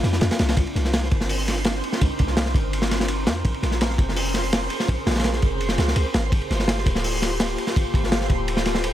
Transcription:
Already playing: C4 D4 E4 F4
0.03 F2, snare, ride
0.13 snare
0.21 F2, snare, ride
0.31 snare, ride
0.39 C2, snare, ride
0.49 snare, ride
0.57 C2 D#4 A#4 C5 C6, kick, ride
0.67 ride
0.75 C2, snare, ride
0.85 snare
0.93 snare, ride
1.04 snare
1.11 G1, kick, ride
1.21 snare
1.29 open hi-hat
1.48 snare, ride
1.64 snare, ride
1.84 ride
1.92 snare
2.01 C2, kick, ride
2.19 C2, kick, ride
2.27 snare
2.37 snare, ride
2.45 snare
2.54 G1, kick, ride
2.73 ride
2.82 snare
2.91 snare, ride
3.00 snare
3.08 ride
3.27 F2, snare, ride
3.45 A#1 C#4 G#4, kick, ride
3.54 ride
3.62 A#1, snare, ride
3.71 snare
3.81 snare, ride
3.90 snare
3.98 F1, kick, ride
4.09 snare
4.16 open hi-hat
4.34 snare, ride
4.53 snare, ride
4.70 ride
4.80 snare
4.88 A#1, kick, ride
5.06 A#1, snare, ride
5.11 snare, ride
5.16 snare, ride
5.19 snare, ride
5.24 snare, ride
5.33 snare
5.42 F1, kick, ride
5.60 ride
5.69 snare
5.78 C#2, snare, ride
5.88 snare
5.96 C#2, ride
6.14 G#1, snare, ride
6.32 G1 A#3 F4 G4 A4, kick, ride
6.42 ride
6.50 G1, snare, ride
6.59 snare
6.68 snare, ride
6.78 snare
6.86 D1, kick, ride
6.95 snare
7.04 open hi-hat
7.22 snare, ride
7.40 snare, ride
7.58 ride
7.67 snare
7.76 G1, kick, ride
7.94 G1, kick, ride
8.04 snare
8.12 snare, ride
8.21 snare
8.30 D1, kick, ride
8.48 ride
8.57 snare
8.65 snare, ride
8.75 snare
8.84 ride

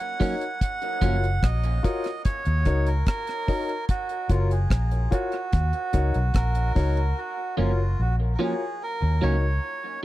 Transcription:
Already playing: F#5
0.20 F#3 A#3 C#4 D#4 F#4 A#4 C#5, kick, open hi-hat
0.41 closed hi-hat
0.61 F#5, kick, closed hi-hat
0.82 closed hi-hat
1.01 F#1 F3 A#3 C#4 F4 F#4 A#4 C#5, kick, closed hi-hat
1.24 closed hi-hat
1.43 A#1 D#5, kick, cross-stick, closed hi-hat
1.64 A#4 C#5, closed hi-hat
1.83 F4 F#4 A#4 C#5 D#5, kick, closed hi-hat
2.04 cross-stick, closed hi-hat
2.25 C#5, kick, closed hi-hat
2.45 D#2, closed hi-hat
2.65 C#2 D#4 F#4 A#4 C#5, kick, closed hi-hat
2.86 A#4, closed hi-hat
3.06 A#4, kick, cross-stick, closed hi-hat
3.27 cross-stick, closed hi-hat
3.47 D#4 F#4 A#4 C#5, kick, open hi-hat
3.69 closed hi-hat
3.89 F#4, kick, closed hi-hat
4.09 closed hi-hat
4.29 F#1 F4 F#4 A#4 C#5, kick, closed hi-hat
4.51 G#4, closed hi-hat
4.70 A#1, kick, cross-stick, closed hi-hat
4.91 A#4 C#5, closed hi-hat
5.11 F4 F#4 A#4 C#5, kick, closed hi-hat
5.32 closed hi-hat
5.53 D#2, kick, closed hi-hat
5.73 closed hi-hat
5.93 C#2 D#4 F#4 A#4 C#5, kick, closed hi-hat
6.14 B1, closed hi-hat
6.34 A#1 A#4, kick, cross-stick, closed hi-hat
6.55 closed hi-hat
6.75 C#2 D#4 F#4 A#4 C#5, kick, open hi-hat
6.97 closed hi-hat
7.18 F#4
7.57 F#1 F3 A#3 C#4 F4 F#4 A#4 C#5
8.00 A#1 F#4
8.19 A#4 C#5
8.34 A#4
8.39 F3 A#3 C#4 F4 F#4 G#4 A#4 C#5
8.83 A#4
9.02 D#2
9.21 C#2 F#3 A#3 C#4 D#4 F#4 A#4 C#5

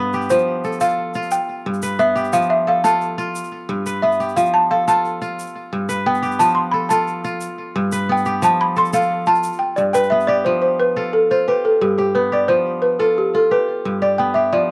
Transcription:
Already playing: G2 B3 F4 A4 B4
0.13 G4, shaker
0.22 shaker
0.30 F3 C5, shaker
0.38 shaker
0.64 A4, shaker
0.72 shaker
0.81 F4 A4 F5, shaker
1.14 F4, shaker
1.22 shaker
1.31 G5, shaker
1.66 G2
1.74 shaker
1.82 B4, shaker
1.99 B3 E5, shaker
2.16 G4, shaker
2.24 shaker
2.33 F3 F5, shaker
2.42 shaker
2.50 E5
2.67 A4 F5
2.84 F4 A4 A5, shaker
3.01 shaker
3.18 F4, shaker
3.35 shaker
3.44 shaker
3.69 G2
3.86 B4, shaker
4.02 B3 E5
4.12 shaker
4.20 G4, shaker
4.29 shaker
4.36 F3 F5, shaker
4.46 shaker
4.54 A5
4.71 A4 F5
4.88 F4 A4 A5, shaker
5.05 shaker
5.22 F4, shaker
5.39 shaker
5.47 shaker
5.73 G2
5.89 B4, shaker
6.06 B3 G5
6.14 shaker
6.23 G4, shaker
6.32 shaker
6.39 F3 A5, shaker
6.55 C6
6.71 A4 B5
6.89 F4 A4 A5, shaker
7.07 shaker
7.24 F4, shaker
7.41 shaker
7.76 G2
7.92 B4, shaker
8.09 B3 G5
8.17 shaker
8.25 G4, shaker
8.42 F3 A5, shaker
8.61 B5
8.76 A4 C6, shaker
8.85 shaker
8.93 F4 A4 F5, shaker
9.02 shaker
9.26 F4 A5, shaker
9.35 shaker
9.43 shaker
9.52 shaker
9.59 G5
9.76 G2 D5, shaker
9.93 B4 G5, shaker
10.03 shaker
10.10 B3 E5
10.20 shaker
10.27 G4 D5
10.45 F3 C5
10.62 C5
10.80 B4
10.96 F4 A4
11.13 A4
11.31 F4 C5
11.48 G4 B4
11.65 A4
11.81 G2 G4
11.98 G4
12.15 B3 B4
12.32 G4 D5
12.48 F3 C5
12.82 B4
12.99 F4 A4
13.18 G4
13.35 F4 A4
13.51 G4 B4
13.85 G2
14.02 G4 D5
14.18 B3 G5
14.34 G4 E5
14.53 F3 D5

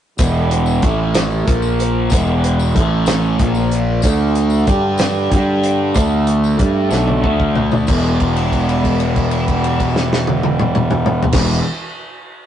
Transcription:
0.18 E1 E2 B2 E3 G3 B3 G4 B4, kick, closed hi-hat, tambourine
0.34 tambourine
0.51 closed hi-hat
0.66 tambourine
0.82 A1 A2 E3 A3 E4 A4, kick, closed hi-hat, tambourine
1.14 snare, closed hi-hat, tambourine
1.31 tambourine
1.45 A#1 A#2 F3 A#3 F4 A#4, kick, closed hi-hat
1.62 tambourine
1.79 closed hi-hat, tambourine
2.09 E1 E2 B2 E3 G3 B3 G4 B4, kick, closed hi-hat, tambourine
2.27 tambourine
2.44 closed hi-hat
2.59 tambourine
2.73 A1 A2 E3 A3 E4 A4, kick, closed hi-hat
3.06 snare, closed hi-hat, tambourine
3.22 tambourine
3.39 A#1 A#2 F3 A#3 F4 A#4, kick, closed hi-hat
3.55 tambourine
3.71 closed hi-hat, tambourine
4.02 D2 D3 A3 D4 A4, kick, closed hi-hat, tambourine
4.35 closed hi-hat
4.50 tambourine
4.66 G2 D3 G3 D4 G4 G5, kick, closed hi-hat, tambourine
4.98 snare, closed hi-hat, tambourine
5.14 tambourine
5.31 G2 G3 D4 G4, kick, closed hi-hat
5.63 closed hi-hat, tambourine
5.94 D2 D3 A3 D4 A4, kick, closed hi-hat, tambourine
6.27 closed hi-hat
6.44 tambourine
6.58 G2 G3 D4 G4, kick, closed hi-hat
6.89 B1 B2 F#3 B3, snare, tambourine
7.07 high tom
7.22 D2 D3 A3 D4, kick
7.40 kick
7.55 floor tom
7.71 floor tom, tambourine
7.86 E1 E2 B2 E3 G3 B3 G4 B4, kick, crash, tambourine
8.20 kick, crash
8.36 crash
8.52 kick, crash
8.69 crash
8.84 kick, crash
9.00 crash
9.16 kick, crash
9.31 crash
9.48 kick, crash
9.64 crash
9.80 kick, crash
9.96 snare
10.13 snare
10.27 high tom
10.43 high tom
10.60 mid tom
10.75 mid tom
10.91 mid tom
11.06 mid tom
11.23 floor tom
11.30 E1 E2 B2 E3 G3 B3 G4 B4, kick, snare, crash
11.36 E3

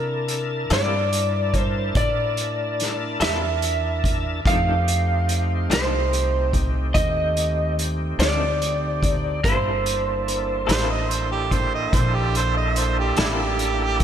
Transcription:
Already playing: C3 D4 E4 A#4 A5
0.28 closed hi-hat
0.70 G2 C3 A#3 E4 A4 D5, snare, closed hi-hat
1.13 closed hi-hat
1.54 kick, closed hi-hat
1.60 C5
1.95 A2 D5, kick, closed hi-hat
2.37 closed hi-hat
2.80 snare, closed hi-hat
3.20 E2 C3 A#3 E4 A4 E5, snare, closed hi-hat
3.62 closed hi-hat
4.04 kick, closed hi-hat
4.45 F2 D#3 A3 C4 D4 D#4 G4 F5, kick, closed hi-hat
4.88 closed hi-hat
5.29 closed hi-hat
5.70 C2 F2 D#3 A3 D4 C5, snare, closed hi-hat
6.13 closed hi-hat
6.53 kick, closed hi-hat
6.94 D#2 D#5, kick, closed hi-hat
7.37 closed hi-hat
7.79 closed hi-hat
8.19 D2 F2 D#3 A3 D4 D5, snare, closed hi-hat
8.62 closed hi-hat
9.03 kick, closed hi-hat
9.43 G1 C3 A#3 D4 E4 A4 C5, kick, closed hi-hat
9.86 closed hi-hat
10.28 closed hi-hat
10.67 A1 C3 A#3 E4 A4 C5, closed hi-hat
10.71 snare
10.89 D#5
11.10 C5, closed hi-hat
11.32 G4
11.51 C5, kick, closed hi-hat
11.74 D#5
11.93 A#1 C5, kick, closed hi-hat
12.16 G4
12.35 C5, closed hi-hat
12.57 D#5
12.76 C5, closed hi-hat
12.99 G4
13.17 A1 C3 A#3 D4 E4 G4 A4, snare, closed hi-hat
13.59 closed hi-hat
14.00 kick, closed hi-hat

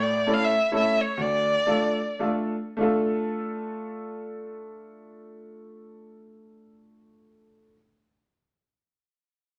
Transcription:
Already playing: A2
0.02 D5
0.27 A3 C#4 E4 A4
0.34 F5
0.44 E5
0.71 A3 C#4 E4 A4
0.77 E5
1.01 C#5
1.17 D2 D5
1.66 A3 D4 F4 A4
2.19 A3 D4 F4 A4
2.77 A3 D4 F4
2.83 A4

